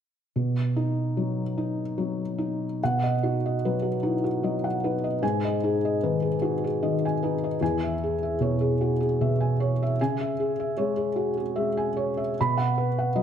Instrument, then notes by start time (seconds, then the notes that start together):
felt piano
0.36 B2
0.76 D#4
1.17 F#3
1.58 D#4
1.98 F#3
2.38 D#4
2.83 B2 F#5
3.03 D#5
3.23 D#4 F#4
3.46 D#5
3.65 F#3 B4
3.82 F#4
4.03 D#4 E4
4.24 F#4
4.43 F#3 D#5
4.64 F#5
4.84 D#4 B4
5.04 D#5
5.22 G#2 G#5
5.45 D#5
5.63 D#4 G#4
5.85 D#5
6.03 D#3 B4
6.22 G#4
6.42 D#4 F#4
6.64 G#4
6.83 D#3 D#5
7.05 G#5
7.23 D#4 B4
7.44 D#5
7.61 E2 G#5
7.83 E5
8.04 G#4
8.23 E5
8.40 B2 C#5
8.61 G#4
8.81 F#4
9.00 G#4
9.21 B2 E5
9.41 G#5
9.60 C#5
9.83 E5
10.01 C#3 G#5
10.21 E5
10.40 G#4
10.60 E5
10.77 G#3 C#5
10.97 G#4
11.16 F#4
11.37 G#4
11.56 G#3 E5
11.77 G#5
11.97 C#5
12.17 E5
12.41 B2 B5
12.57 F#5
12.78 B4
12.99 F#5
13.16 F#3 D#5